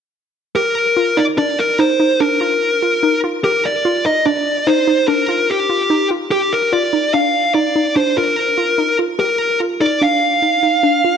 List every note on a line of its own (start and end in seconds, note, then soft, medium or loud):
0.55 0.92 G4 medium
0.55 1.19 A#4 medium
0.97 1.15 F4 medium
1.17 1.35 D#4 medium
1.17 1.23 D5 medium
1.38 1.74 D4 medium
1.38 1.59 D5 medium
1.59 1.80 A#4 medium
1.79 1.97 D#4 medium
1.79 2.22 C5 medium
2.00 2.18 D#4 medium
2.20 2.38 D4 medium
2.20 3.19 A#4 medium
2.41 2.77 F4 medium
2.82 3.00 F4 medium
3.03 3.21 D#4 medium
3.24 3.42 F4 medium
3.44 3.80 G4 medium
3.44 3.65 A#4 medium
3.65 4.03 D5 medium
3.85 4.03 F4 medium
4.06 4.24 D#4 medium
4.06 4.25 D#5 medium
4.26 4.62 D4 medium
4.26 4.69 D5 medium
4.67 4.85 D#4 medium
4.67 5.07 C5 medium
4.87 5.06 D#4 medium
5.08 5.26 D4 medium
5.08 5.50 A#4 medium
5.29 5.65 F4 medium
5.50 6.07 G4 medium
5.69 5.88 F4 medium
5.90 6.08 D#4 medium
6.11 6.29 F4 medium
6.31 6.53 G4 medium
6.31 6.68 G4 medium
6.53 6.72 A#4 medium
6.73 6.91 F4 medium
6.73 7.14 D5 medium
6.93 7.11 D#4 medium
7.14 7.50 D4 medium
7.14 7.54 F5 medium
7.55 7.73 D#4 medium
7.55 7.93 D5 medium
7.76 7.94 D#4 medium
7.96 8.14 D4 medium
7.96 8.17 C5 medium
8.17 8.53 F4 medium
8.17 8.95 A#4 medium
8.58 8.76 F4 medium
8.78 8.96 D#4 medium
8.99 9.17 F4 medium
9.19 9.55 G4 medium
9.19 9.58 A#4 medium
9.60 9.78 F4 medium
9.81 9.99 D#4 medium
9.81 10.02 D5 medium
10.02 10.38 D4 medium
10.02 11.17 F5 medium
10.42 10.60 D#4 medium
10.63 10.81 D#4 medium
10.83 11.01 D4 medium
11.04 11.17 F4 medium